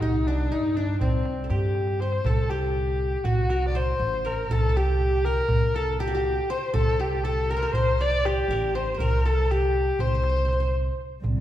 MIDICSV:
0, 0, Header, 1, 6, 480
1, 0, Start_track
1, 0, Tempo, 498339
1, 19, Time_signature, 9, 3, 24, 8
1, 10983, End_track
2, 0, Start_track
2, 0, Title_t, "Kamancheh"
2, 0, Program_c, 0, 110
2, 8, Note_on_c, 0, 63, 76
2, 257, Note_on_c, 0, 62, 76
2, 271, Note_off_c, 0, 63, 0
2, 499, Note_on_c, 0, 63, 77
2, 514, Note_off_c, 0, 62, 0
2, 736, Note_on_c, 0, 62, 79
2, 750, Note_off_c, 0, 63, 0
2, 968, Note_off_c, 0, 62, 0
2, 974, Note_on_c, 0, 60, 69
2, 1420, Note_off_c, 0, 60, 0
2, 1455, Note_on_c, 0, 67, 68
2, 1932, Note_on_c, 0, 72, 76
2, 1946, Note_off_c, 0, 67, 0
2, 2173, Note_on_c, 0, 69, 81
2, 2188, Note_off_c, 0, 72, 0
2, 2404, Note_on_c, 0, 67, 76
2, 2418, Note_off_c, 0, 69, 0
2, 3046, Note_off_c, 0, 67, 0
2, 3046, Note_on_c, 0, 67, 63
2, 3124, Note_on_c, 0, 66, 81
2, 3138, Note_off_c, 0, 67, 0
2, 3539, Note_off_c, 0, 66, 0
2, 3544, Note_on_c, 0, 74, 69
2, 3623, Note_on_c, 0, 72, 86
2, 3638, Note_off_c, 0, 74, 0
2, 4104, Note_on_c, 0, 70, 78
2, 4119, Note_off_c, 0, 72, 0
2, 4350, Note_on_c, 0, 69, 89
2, 4364, Note_off_c, 0, 70, 0
2, 4585, Note_on_c, 0, 67, 90
2, 4600, Note_off_c, 0, 69, 0
2, 5055, Note_on_c, 0, 70, 103
2, 5069, Note_off_c, 0, 67, 0
2, 5542, Note_on_c, 0, 69, 92
2, 5556, Note_off_c, 0, 70, 0
2, 5701, Note_off_c, 0, 69, 0
2, 5701, Note_on_c, 0, 69, 60
2, 5780, Note_on_c, 0, 67, 92
2, 5794, Note_off_c, 0, 69, 0
2, 6262, Note_on_c, 0, 72, 85
2, 6276, Note_off_c, 0, 67, 0
2, 6497, Note_off_c, 0, 72, 0
2, 6503, Note_on_c, 0, 69, 98
2, 6745, Note_on_c, 0, 67, 86
2, 6760, Note_off_c, 0, 69, 0
2, 6974, Note_on_c, 0, 69, 88
2, 6988, Note_off_c, 0, 67, 0
2, 7222, Note_on_c, 0, 70, 93
2, 7237, Note_off_c, 0, 69, 0
2, 7449, Note_off_c, 0, 70, 0
2, 7455, Note_on_c, 0, 72, 97
2, 7715, Note_on_c, 0, 74, 106
2, 7729, Note_off_c, 0, 72, 0
2, 7948, Note_on_c, 0, 67, 93
2, 7962, Note_off_c, 0, 74, 0
2, 8429, Note_on_c, 0, 72, 82
2, 8444, Note_off_c, 0, 67, 0
2, 8664, Note_off_c, 0, 72, 0
2, 8669, Note_on_c, 0, 70, 97
2, 8917, Note_on_c, 0, 69, 91
2, 8932, Note_off_c, 0, 70, 0
2, 9161, Note_on_c, 0, 67, 93
2, 9176, Note_off_c, 0, 69, 0
2, 9635, Note_on_c, 0, 72, 95
2, 9650, Note_off_c, 0, 67, 0
2, 10349, Note_off_c, 0, 72, 0
2, 10983, End_track
3, 0, Start_track
3, 0, Title_t, "Qanun"
3, 0, Program_c, 1, 107
3, 0, Note_on_c, 1, 67, 71
3, 0, Note_on_c, 1, 69, 65
3, 23, Note_on_c, 1, 63, 75
3, 267, Note_on_c, 1, 62, 67
3, 325, Note_off_c, 1, 63, 0
3, 497, Note_on_c, 1, 63, 68
3, 555, Note_off_c, 1, 62, 0
3, 729, Note_off_c, 1, 69, 0
3, 740, Note_on_c, 1, 62, 61
3, 797, Note_off_c, 1, 63, 0
3, 892, Note_off_c, 1, 67, 0
3, 976, Note_on_c, 1, 60, 55
3, 1387, Note_on_c, 1, 69, 43
3, 1447, Note_on_c, 1, 67, 57
3, 1945, Note_on_c, 1, 72, 62
3, 2175, Note_off_c, 1, 62, 0
3, 2178, Note_off_c, 1, 69, 0
3, 2182, Note_on_c, 1, 69, 76
3, 2409, Note_off_c, 1, 67, 0
3, 2413, Note_on_c, 1, 67, 71
3, 2517, Note_off_c, 1, 60, 0
3, 2962, Note_off_c, 1, 72, 0
3, 3129, Note_on_c, 1, 66, 73
3, 3187, Note_off_c, 1, 67, 0
3, 3308, Note_off_c, 1, 69, 0
3, 3371, Note_on_c, 1, 70, 62
3, 3613, Note_on_c, 1, 72, 75
3, 4086, Note_off_c, 1, 70, 0
3, 4090, Note_on_c, 1, 70, 70
3, 4343, Note_on_c, 1, 69, 89
3, 4386, Note_off_c, 1, 66, 0
3, 4401, Note_off_c, 1, 70, 0
3, 4515, Note_off_c, 1, 69, 0
3, 4519, Note_on_c, 1, 69, 54
3, 4593, Note_on_c, 1, 67, 71
3, 4629, Note_off_c, 1, 72, 0
3, 5066, Note_on_c, 1, 70, 76
3, 5123, Note_off_c, 1, 69, 0
3, 5545, Note_on_c, 1, 69, 77
3, 5602, Note_off_c, 1, 70, 0
3, 5776, Note_off_c, 1, 67, 0
3, 5780, Note_on_c, 1, 67, 83
3, 5851, Note_on_c, 1, 66, 64
3, 5909, Note_off_c, 1, 67, 0
3, 5920, Note_on_c, 1, 67, 74
3, 5978, Note_off_c, 1, 66, 0
3, 6260, Note_on_c, 1, 72, 84
3, 6485, Note_off_c, 1, 69, 0
3, 6488, Note_on_c, 1, 69, 82
3, 6734, Note_off_c, 1, 67, 0
3, 6738, Note_on_c, 1, 67, 74
3, 6977, Note_off_c, 1, 69, 0
3, 6981, Note_on_c, 1, 69, 79
3, 7230, Note_on_c, 1, 70, 73
3, 7277, Note_off_c, 1, 72, 0
3, 7287, Note_on_c, 1, 72, 67
3, 7288, Note_off_c, 1, 69, 0
3, 7342, Note_off_c, 1, 70, 0
3, 7345, Note_on_c, 1, 70, 70
3, 7459, Note_off_c, 1, 72, 0
3, 7463, Note_on_c, 1, 72, 78
3, 7711, Note_on_c, 1, 74, 83
3, 7947, Note_off_c, 1, 67, 0
3, 7957, Note_on_c, 1, 67, 78
3, 8189, Note_off_c, 1, 70, 0
3, 8193, Note_on_c, 1, 70, 84
3, 8425, Note_off_c, 1, 72, 0
3, 8429, Note_on_c, 1, 72, 79
3, 8611, Note_off_c, 1, 72, 0
3, 8615, Note_on_c, 1, 72, 55
3, 8659, Note_off_c, 1, 74, 0
3, 8667, Note_off_c, 1, 70, 0
3, 8671, Note_on_c, 1, 70, 80
3, 8914, Note_on_c, 1, 69, 72
3, 8971, Note_off_c, 1, 70, 0
3, 9159, Note_off_c, 1, 67, 0
3, 9163, Note_on_c, 1, 67, 67
3, 9629, Note_off_c, 1, 72, 0
3, 9633, Note_on_c, 1, 72, 67
3, 9697, Note_off_c, 1, 72, 0
3, 9700, Note_on_c, 1, 72, 49
3, 9772, Note_off_c, 1, 72, 0
3, 9776, Note_on_c, 1, 72, 55
3, 9843, Note_off_c, 1, 72, 0
3, 9846, Note_on_c, 1, 72, 41
3, 9912, Note_off_c, 1, 72, 0
3, 9915, Note_on_c, 1, 72, 45
3, 9980, Note_off_c, 1, 72, 0
3, 9984, Note_on_c, 1, 72, 43
3, 10039, Note_off_c, 1, 69, 0
3, 10062, Note_off_c, 1, 72, 0
3, 10066, Note_on_c, 1, 72, 49
3, 10134, Note_off_c, 1, 72, 0
3, 10138, Note_on_c, 1, 72, 42
3, 10207, Note_off_c, 1, 72, 0
3, 10211, Note_on_c, 1, 72, 53
3, 10371, Note_off_c, 1, 67, 0
3, 10983, Note_off_c, 1, 72, 0
3, 10983, End_track
4, 0, Start_track
4, 0, Title_t, "Cello"
4, 0, Program_c, 2, 42
4, 10829, Note_on_c, 2, 36, 71
4, 10983, Note_off_c, 2, 36, 0
4, 10983, End_track
5, 0, Start_track
5, 0, Title_t, "Upright bass"
5, 0, Program_c, 3, 32
5, 16, Note_on_c, 3, 36, 91
5, 444, Note_off_c, 3, 36, 0
5, 490, Note_on_c, 3, 43, 77
5, 920, Note_off_c, 3, 43, 0
5, 969, Note_on_c, 3, 36, 86
5, 1399, Note_off_c, 3, 36, 0
5, 1441, Note_on_c, 3, 43, 84
5, 2088, Note_off_c, 3, 43, 0
5, 2160, Note_on_c, 3, 36, 102
5, 3020, Note_off_c, 3, 36, 0
5, 3123, Note_on_c, 3, 36, 86
5, 3768, Note_off_c, 3, 36, 0
5, 3848, Note_on_c, 3, 33, 94
5, 4277, Note_off_c, 3, 33, 0
5, 4330, Note_on_c, 3, 36, 94
5, 5186, Note_off_c, 3, 36, 0
5, 5283, Note_on_c, 3, 36, 95
5, 6143, Note_off_c, 3, 36, 0
5, 6491, Note_on_c, 3, 36, 106
5, 7350, Note_off_c, 3, 36, 0
5, 7444, Note_on_c, 3, 36, 77
5, 8093, Note_off_c, 3, 36, 0
5, 8170, Note_on_c, 3, 33, 92
5, 8602, Note_off_c, 3, 33, 0
5, 8659, Note_on_c, 3, 36, 94
5, 9516, Note_off_c, 3, 36, 0
5, 9621, Note_on_c, 3, 36, 94
5, 10479, Note_off_c, 3, 36, 0
5, 10826, Note_on_c, 3, 36, 85
5, 10983, Note_off_c, 3, 36, 0
5, 10983, End_track
6, 0, Start_track
6, 0, Title_t, "Darbuka"
6, 7, Note_on_c, 9, 64, 74
6, 103, Note_off_c, 9, 64, 0
6, 243, Note_on_c, 9, 63, 60
6, 340, Note_off_c, 9, 63, 0
6, 485, Note_on_c, 9, 62, 26
6, 581, Note_off_c, 9, 62, 0
6, 606, Note_on_c, 9, 62, 26
6, 702, Note_off_c, 9, 62, 0
6, 721, Note_on_c, 9, 62, 27
6, 818, Note_off_c, 9, 62, 0
6, 967, Note_on_c, 9, 64, 82
6, 1063, Note_off_c, 9, 64, 0
6, 1207, Note_on_c, 9, 63, 72
6, 1303, Note_off_c, 9, 63, 0
6, 1441, Note_on_c, 9, 63, 65
6, 1537, Note_off_c, 9, 63, 0
6, 1681, Note_on_c, 9, 63, 48
6, 1777, Note_off_c, 9, 63, 0
6, 1803, Note_on_c, 9, 62, 58
6, 1899, Note_off_c, 9, 62, 0
6, 1920, Note_on_c, 9, 63, 58
6, 2016, Note_off_c, 9, 63, 0
6, 2044, Note_on_c, 9, 62, 78
6, 2141, Note_off_c, 9, 62, 0
6, 2162, Note_on_c, 9, 64, 89
6, 2259, Note_off_c, 9, 64, 0
6, 2410, Note_on_c, 9, 63, 68
6, 2506, Note_off_c, 9, 63, 0
6, 2650, Note_on_c, 9, 62, 22
6, 2746, Note_off_c, 9, 62, 0
6, 2771, Note_on_c, 9, 62, 27
6, 2867, Note_off_c, 9, 62, 0
6, 3129, Note_on_c, 9, 64, 94
6, 3225, Note_off_c, 9, 64, 0
6, 3366, Note_on_c, 9, 63, 77
6, 3462, Note_off_c, 9, 63, 0
6, 3608, Note_on_c, 9, 63, 69
6, 3704, Note_off_c, 9, 63, 0
6, 3857, Note_on_c, 9, 62, 23
6, 3953, Note_off_c, 9, 62, 0
6, 4335, Note_on_c, 9, 64, 93
6, 4431, Note_off_c, 9, 64, 0
6, 4567, Note_on_c, 9, 63, 65
6, 4663, Note_off_c, 9, 63, 0
6, 4815, Note_on_c, 9, 62, 28
6, 4911, Note_off_c, 9, 62, 0
6, 4934, Note_on_c, 9, 62, 27
6, 5031, Note_off_c, 9, 62, 0
6, 5283, Note_on_c, 9, 64, 102
6, 5380, Note_off_c, 9, 64, 0
6, 5408, Note_on_c, 9, 62, 27
6, 5504, Note_off_c, 9, 62, 0
6, 5530, Note_on_c, 9, 63, 70
6, 5627, Note_off_c, 9, 63, 0
6, 5774, Note_on_c, 9, 63, 65
6, 5870, Note_off_c, 9, 63, 0
6, 6009, Note_on_c, 9, 62, 23
6, 6105, Note_off_c, 9, 62, 0
6, 6491, Note_on_c, 9, 64, 94
6, 6587, Note_off_c, 9, 64, 0
6, 6727, Note_on_c, 9, 63, 58
6, 6823, Note_off_c, 9, 63, 0
6, 6972, Note_on_c, 9, 62, 25
6, 7069, Note_off_c, 9, 62, 0
6, 7086, Note_on_c, 9, 62, 25
6, 7183, Note_off_c, 9, 62, 0
6, 7447, Note_on_c, 9, 64, 88
6, 7543, Note_off_c, 9, 64, 0
6, 7571, Note_on_c, 9, 62, 24
6, 7667, Note_off_c, 9, 62, 0
6, 7689, Note_on_c, 9, 63, 70
6, 7785, Note_off_c, 9, 63, 0
6, 7930, Note_on_c, 9, 63, 55
6, 8026, Note_off_c, 9, 63, 0
6, 8174, Note_on_c, 9, 62, 24
6, 8271, Note_off_c, 9, 62, 0
6, 8654, Note_on_c, 9, 64, 70
6, 8750, Note_off_c, 9, 64, 0
6, 8899, Note_on_c, 9, 63, 56
6, 8996, Note_off_c, 9, 63, 0
6, 9135, Note_on_c, 9, 62, 25
6, 9232, Note_off_c, 9, 62, 0
6, 9255, Note_on_c, 9, 62, 25
6, 9352, Note_off_c, 9, 62, 0
6, 9375, Note_on_c, 9, 62, 29
6, 9472, Note_off_c, 9, 62, 0
6, 9619, Note_on_c, 9, 64, 78
6, 9715, Note_off_c, 9, 64, 0
6, 9741, Note_on_c, 9, 62, 25
6, 9838, Note_off_c, 9, 62, 0
6, 9859, Note_on_c, 9, 63, 77
6, 9955, Note_off_c, 9, 63, 0
6, 10098, Note_on_c, 9, 63, 69
6, 10194, Note_off_c, 9, 63, 0
6, 10342, Note_on_c, 9, 62, 24
6, 10438, Note_off_c, 9, 62, 0
6, 10460, Note_on_c, 9, 62, 23
6, 10556, Note_off_c, 9, 62, 0
6, 10581, Note_on_c, 9, 62, 22
6, 10677, Note_off_c, 9, 62, 0
6, 10822, Note_on_c, 9, 64, 82
6, 10918, Note_off_c, 9, 64, 0
6, 10983, End_track
0, 0, End_of_file